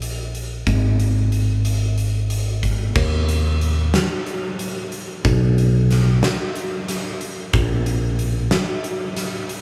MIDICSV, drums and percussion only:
0, 0, Header, 1, 2, 480
1, 0, Start_track
1, 0, Tempo, 653595
1, 491, Time_signature, 7, 3, 24, 8
1, 7061, End_track
2, 0, Start_track
2, 0, Title_t, "Drums"
2, 14, Note_on_c, 9, 42, 58
2, 87, Note_off_c, 9, 42, 0
2, 255, Note_on_c, 9, 42, 46
2, 329, Note_off_c, 9, 42, 0
2, 490, Note_on_c, 9, 36, 75
2, 490, Note_on_c, 9, 42, 58
2, 564, Note_off_c, 9, 36, 0
2, 564, Note_off_c, 9, 42, 0
2, 731, Note_on_c, 9, 42, 50
2, 805, Note_off_c, 9, 42, 0
2, 970, Note_on_c, 9, 42, 47
2, 1043, Note_off_c, 9, 42, 0
2, 1211, Note_on_c, 9, 42, 63
2, 1284, Note_off_c, 9, 42, 0
2, 1451, Note_on_c, 9, 42, 46
2, 1525, Note_off_c, 9, 42, 0
2, 1690, Note_on_c, 9, 42, 63
2, 1763, Note_off_c, 9, 42, 0
2, 1932, Note_on_c, 9, 36, 51
2, 1933, Note_on_c, 9, 42, 51
2, 2005, Note_off_c, 9, 36, 0
2, 2006, Note_off_c, 9, 42, 0
2, 2169, Note_on_c, 9, 49, 79
2, 2171, Note_on_c, 9, 36, 98
2, 2243, Note_off_c, 9, 49, 0
2, 2245, Note_off_c, 9, 36, 0
2, 2413, Note_on_c, 9, 42, 59
2, 2486, Note_off_c, 9, 42, 0
2, 2653, Note_on_c, 9, 42, 55
2, 2726, Note_off_c, 9, 42, 0
2, 2892, Note_on_c, 9, 38, 96
2, 2892, Note_on_c, 9, 42, 74
2, 2965, Note_off_c, 9, 38, 0
2, 2965, Note_off_c, 9, 42, 0
2, 3132, Note_on_c, 9, 42, 49
2, 3205, Note_off_c, 9, 42, 0
2, 3372, Note_on_c, 9, 42, 68
2, 3446, Note_off_c, 9, 42, 0
2, 3612, Note_on_c, 9, 42, 48
2, 3686, Note_off_c, 9, 42, 0
2, 3853, Note_on_c, 9, 42, 68
2, 3854, Note_on_c, 9, 36, 99
2, 3927, Note_off_c, 9, 42, 0
2, 3928, Note_off_c, 9, 36, 0
2, 4098, Note_on_c, 9, 42, 52
2, 4172, Note_off_c, 9, 42, 0
2, 4337, Note_on_c, 9, 38, 30
2, 4337, Note_on_c, 9, 42, 50
2, 4411, Note_off_c, 9, 38, 0
2, 4411, Note_off_c, 9, 42, 0
2, 4574, Note_on_c, 9, 38, 98
2, 4574, Note_on_c, 9, 42, 70
2, 4648, Note_off_c, 9, 38, 0
2, 4648, Note_off_c, 9, 42, 0
2, 4814, Note_on_c, 9, 42, 54
2, 4887, Note_off_c, 9, 42, 0
2, 5056, Note_on_c, 9, 38, 31
2, 5056, Note_on_c, 9, 42, 77
2, 5129, Note_off_c, 9, 38, 0
2, 5129, Note_off_c, 9, 42, 0
2, 5294, Note_on_c, 9, 42, 52
2, 5367, Note_off_c, 9, 42, 0
2, 5533, Note_on_c, 9, 42, 75
2, 5534, Note_on_c, 9, 36, 98
2, 5606, Note_off_c, 9, 42, 0
2, 5608, Note_off_c, 9, 36, 0
2, 5774, Note_on_c, 9, 42, 59
2, 5847, Note_off_c, 9, 42, 0
2, 6014, Note_on_c, 9, 42, 57
2, 6087, Note_off_c, 9, 42, 0
2, 6250, Note_on_c, 9, 38, 98
2, 6250, Note_on_c, 9, 42, 80
2, 6323, Note_off_c, 9, 38, 0
2, 6323, Note_off_c, 9, 42, 0
2, 6493, Note_on_c, 9, 42, 58
2, 6566, Note_off_c, 9, 42, 0
2, 6731, Note_on_c, 9, 38, 29
2, 6731, Note_on_c, 9, 42, 74
2, 6804, Note_off_c, 9, 38, 0
2, 6804, Note_off_c, 9, 42, 0
2, 6972, Note_on_c, 9, 42, 50
2, 7045, Note_off_c, 9, 42, 0
2, 7061, End_track
0, 0, End_of_file